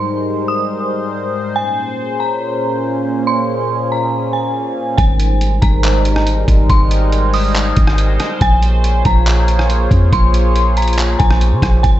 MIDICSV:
0, 0, Header, 1, 6, 480
1, 0, Start_track
1, 0, Tempo, 428571
1, 1740, Time_signature, 4, 2, 24, 8
1, 13438, End_track
2, 0, Start_track
2, 0, Title_t, "Synth bell"
2, 0, Program_c, 0, 98
2, 0, Note_on_c, 0, 84, 80
2, 498, Note_off_c, 0, 84, 0
2, 540, Note_on_c, 0, 87, 82
2, 1695, Note_off_c, 0, 87, 0
2, 1744, Note_on_c, 0, 80, 97
2, 2419, Note_off_c, 0, 80, 0
2, 2464, Note_on_c, 0, 82, 74
2, 3139, Note_off_c, 0, 82, 0
2, 3664, Note_on_c, 0, 84, 95
2, 4339, Note_off_c, 0, 84, 0
2, 4389, Note_on_c, 0, 82, 75
2, 4836, Note_off_c, 0, 82, 0
2, 4851, Note_on_c, 0, 80, 73
2, 5532, Note_off_c, 0, 80, 0
2, 5572, Note_on_c, 0, 80, 92
2, 6253, Note_off_c, 0, 80, 0
2, 6292, Note_on_c, 0, 82, 88
2, 6973, Note_off_c, 0, 82, 0
2, 7502, Note_on_c, 0, 84, 92
2, 8178, Note_off_c, 0, 84, 0
2, 8219, Note_on_c, 0, 87, 88
2, 9375, Note_off_c, 0, 87, 0
2, 9428, Note_on_c, 0, 80, 103
2, 10101, Note_off_c, 0, 80, 0
2, 10145, Note_on_c, 0, 82, 79
2, 10820, Note_off_c, 0, 82, 0
2, 11345, Note_on_c, 0, 84, 98
2, 12020, Note_off_c, 0, 84, 0
2, 12067, Note_on_c, 0, 82, 85
2, 12515, Note_off_c, 0, 82, 0
2, 12532, Note_on_c, 0, 80, 84
2, 13212, Note_off_c, 0, 80, 0
2, 13252, Note_on_c, 0, 80, 97
2, 13438, Note_off_c, 0, 80, 0
2, 13438, End_track
3, 0, Start_track
3, 0, Title_t, "Analog synth pad"
3, 0, Program_c, 1, 89
3, 0, Note_on_c, 1, 44, 77
3, 0, Note_on_c, 1, 55, 71
3, 0, Note_on_c, 1, 56, 69
3, 0, Note_on_c, 1, 70, 69
3, 0, Note_on_c, 1, 72, 84
3, 1701, Note_off_c, 1, 44, 0
3, 1701, Note_off_c, 1, 55, 0
3, 1701, Note_off_c, 1, 56, 0
3, 1701, Note_off_c, 1, 70, 0
3, 1742, Note_on_c, 1, 68, 71
3, 1743, Note_on_c, 1, 46, 77
3, 1743, Note_on_c, 1, 58, 67
3, 1744, Note_on_c, 1, 61, 70
3, 5536, Note_off_c, 1, 72, 0
3, 5543, Note_off_c, 1, 46, 0
3, 5543, Note_off_c, 1, 58, 0
3, 5543, Note_off_c, 1, 68, 0
3, 5544, Note_off_c, 1, 61, 0
3, 5582, Note_on_c, 1, 56, 81
3, 5583, Note_on_c, 1, 55, 75
3, 5583, Note_on_c, 1, 72, 88
3, 5584, Note_on_c, 1, 63, 74
3, 5584, Note_on_c, 1, 70, 75
3, 9383, Note_off_c, 1, 55, 0
3, 9383, Note_off_c, 1, 56, 0
3, 9384, Note_off_c, 1, 63, 0
3, 9384, Note_off_c, 1, 70, 0
3, 9419, Note_on_c, 1, 58, 81
3, 9420, Note_on_c, 1, 65, 71
3, 9420, Note_on_c, 1, 68, 75
3, 9422, Note_on_c, 1, 73, 90
3, 13221, Note_off_c, 1, 58, 0
3, 13222, Note_off_c, 1, 65, 0
3, 13222, Note_off_c, 1, 68, 0
3, 13223, Note_off_c, 1, 73, 0
3, 13260, Note_on_c, 1, 70, 75
3, 13261, Note_on_c, 1, 55, 75
3, 13261, Note_on_c, 1, 56, 81
3, 13261, Note_on_c, 1, 63, 77
3, 13438, Note_off_c, 1, 55, 0
3, 13438, Note_off_c, 1, 56, 0
3, 13438, Note_off_c, 1, 63, 0
3, 13438, Note_off_c, 1, 70, 0
3, 13438, Note_off_c, 1, 72, 0
3, 13438, End_track
4, 0, Start_track
4, 0, Title_t, "808-style bass"
4, 0, Program_c, 2, 38
4, 5580, Note_on_c, 2, 32, 116
4, 6271, Note_off_c, 2, 32, 0
4, 6299, Note_on_c, 2, 32, 114
4, 7221, Note_off_c, 2, 32, 0
4, 7258, Note_on_c, 2, 32, 110
4, 7489, Note_off_c, 2, 32, 0
4, 7500, Note_on_c, 2, 32, 115
4, 8655, Note_off_c, 2, 32, 0
4, 8701, Note_on_c, 2, 32, 108
4, 9161, Note_off_c, 2, 32, 0
4, 9421, Note_on_c, 2, 34, 111
4, 10112, Note_off_c, 2, 34, 0
4, 10140, Note_on_c, 2, 34, 108
4, 11062, Note_off_c, 2, 34, 0
4, 11098, Note_on_c, 2, 41, 107
4, 11330, Note_off_c, 2, 41, 0
4, 11341, Note_on_c, 2, 34, 116
4, 12496, Note_off_c, 2, 34, 0
4, 12543, Note_on_c, 2, 34, 114
4, 12900, Note_on_c, 2, 49, 98
4, 12917, Note_off_c, 2, 34, 0
4, 13012, Note_off_c, 2, 49, 0
4, 13018, Note_on_c, 2, 34, 108
4, 13250, Note_off_c, 2, 34, 0
4, 13261, Note_on_c, 2, 32, 116
4, 13438, Note_off_c, 2, 32, 0
4, 13438, End_track
5, 0, Start_track
5, 0, Title_t, "Downlifter"
5, 0, Program_c, 3, 103
5, 0, Note_on_c, 3, 60, 77
5, 1741, Note_off_c, 3, 60, 0
5, 13438, End_track
6, 0, Start_track
6, 0, Title_t, "Drums"
6, 5580, Note_on_c, 9, 36, 113
6, 5580, Note_on_c, 9, 42, 76
6, 5692, Note_off_c, 9, 36, 0
6, 5692, Note_off_c, 9, 42, 0
6, 5819, Note_on_c, 9, 42, 80
6, 5931, Note_off_c, 9, 42, 0
6, 6060, Note_on_c, 9, 42, 82
6, 6172, Note_off_c, 9, 42, 0
6, 6297, Note_on_c, 9, 42, 70
6, 6300, Note_on_c, 9, 36, 96
6, 6409, Note_off_c, 9, 42, 0
6, 6412, Note_off_c, 9, 36, 0
6, 6540, Note_on_c, 9, 42, 89
6, 6543, Note_on_c, 9, 39, 119
6, 6652, Note_off_c, 9, 42, 0
6, 6655, Note_off_c, 9, 39, 0
6, 6778, Note_on_c, 9, 42, 69
6, 6890, Note_off_c, 9, 42, 0
6, 6900, Note_on_c, 9, 37, 90
6, 7012, Note_off_c, 9, 37, 0
6, 7019, Note_on_c, 9, 42, 93
6, 7131, Note_off_c, 9, 42, 0
6, 7257, Note_on_c, 9, 36, 102
6, 7261, Note_on_c, 9, 42, 79
6, 7369, Note_off_c, 9, 36, 0
6, 7373, Note_off_c, 9, 42, 0
6, 7499, Note_on_c, 9, 36, 118
6, 7499, Note_on_c, 9, 42, 77
6, 7611, Note_off_c, 9, 36, 0
6, 7611, Note_off_c, 9, 42, 0
6, 7739, Note_on_c, 9, 42, 80
6, 7851, Note_off_c, 9, 42, 0
6, 7980, Note_on_c, 9, 42, 78
6, 8092, Note_off_c, 9, 42, 0
6, 8216, Note_on_c, 9, 46, 56
6, 8328, Note_off_c, 9, 46, 0
6, 8459, Note_on_c, 9, 42, 91
6, 8462, Note_on_c, 9, 39, 124
6, 8571, Note_off_c, 9, 42, 0
6, 8574, Note_off_c, 9, 39, 0
6, 8697, Note_on_c, 9, 42, 67
6, 8702, Note_on_c, 9, 36, 102
6, 8809, Note_off_c, 9, 42, 0
6, 8814, Note_off_c, 9, 36, 0
6, 8819, Note_on_c, 9, 37, 97
6, 8931, Note_off_c, 9, 37, 0
6, 8939, Note_on_c, 9, 42, 93
6, 9051, Note_off_c, 9, 42, 0
6, 9180, Note_on_c, 9, 42, 83
6, 9185, Note_on_c, 9, 37, 100
6, 9292, Note_off_c, 9, 42, 0
6, 9297, Note_off_c, 9, 37, 0
6, 9420, Note_on_c, 9, 36, 115
6, 9420, Note_on_c, 9, 42, 74
6, 9532, Note_off_c, 9, 36, 0
6, 9532, Note_off_c, 9, 42, 0
6, 9660, Note_on_c, 9, 42, 83
6, 9772, Note_off_c, 9, 42, 0
6, 9902, Note_on_c, 9, 42, 77
6, 10014, Note_off_c, 9, 42, 0
6, 10137, Note_on_c, 9, 42, 71
6, 10140, Note_on_c, 9, 36, 95
6, 10249, Note_off_c, 9, 42, 0
6, 10252, Note_off_c, 9, 36, 0
6, 10380, Note_on_c, 9, 42, 90
6, 10383, Note_on_c, 9, 39, 123
6, 10492, Note_off_c, 9, 42, 0
6, 10495, Note_off_c, 9, 39, 0
6, 10619, Note_on_c, 9, 42, 70
6, 10731, Note_off_c, 9, 42, 0
6, 10743, Note_on_c, 9, 37, 90
6, 10855, Note_off_c, 9, 37, 0
6, 10861, Note_on_c, 9, 42, 88
6, 10973, Note_off_c, 9, 42, 0
6, 11099, Note_on_c, 9, 36, 97
6, 11103, Note_on_c, 9, 42, 81
6, 11211, Note_off_c, 9, 36, 0
6, 11215, Note_off_c, 9, 42, 0
6, 11341, Note_on_c, 9, 36, 111
6, 11341, Note_on_c, 9, 42, 78
6, 11453, Note_off_c, 9, 36, 0
6, 11453, Note_off_c, 9, 42, 0
6, 11581, Note_on_c, 9, 42, 81
6, 11693, Note_off_c, 9, 42, 0
6, 11823, Note_on_c, 9, 42, 81
6, 11935, Note_off_c, 9, 42, 0
6, 12061, Note_on_c, 9, 42, 63
6, 12121, Note_off_c, 9, 42, 0
6, 12121, Note_on_c, 9, 42, 61
6, 12180, Note_off_c, 9, 42, 0
6, 12180, Note_on_c, 9, 42, 63
6, 12241, Note_off_c, 9, 42, 0
6, 12241, Note_on_c, 9, 42, 65
6, 12301, Note_off_c, 9, 42, 0
6, 12301, Note_on_c, 9, 42, 93
6, 12304, Note_on_c, 9, 39, 121
6, 12413, Note_off_c, 9, 42, 0
6, 12416, Note_off_c, 9, 39, 0
6, 12540, Note_on_c, 9, 42, 72
6, 12543, Note_on_c, 9, 36, 96
6, 12652, Note_off_c, 9, 42, 0
6, 12655, Note_off_c, 9, 36, 0
6, 12662, Note_on_c, 9, 37, 96
6, 12774, Note_off_c, 9, 37, 0
6, 12781, Note_on_c, 9, 42, 86
6, 12893, Note_off_c, 9, 42, 0
6, 13018, Note_on_c, 9, 36, 99
6, 13022, Note_on_c, 9, 42, 79
6, 13027, Note_on_c, 9, 37, 99
6, 13130, Note_off_c, 9, 36, 0
6, 13134, Note_off_c, 9, 42, 0
6, 13139, Note_off_c, 9, 37, 0
6, 13260, Note_on_c, 9, 42, 75
6, 13261, Note_on_c, 9, 36, 116
6, 13372, Note_off_c, 9, 42, 0
6, 13373, Note_off_c, 9, 36, 0
6, 13438, End_track
0, 0, End_of_file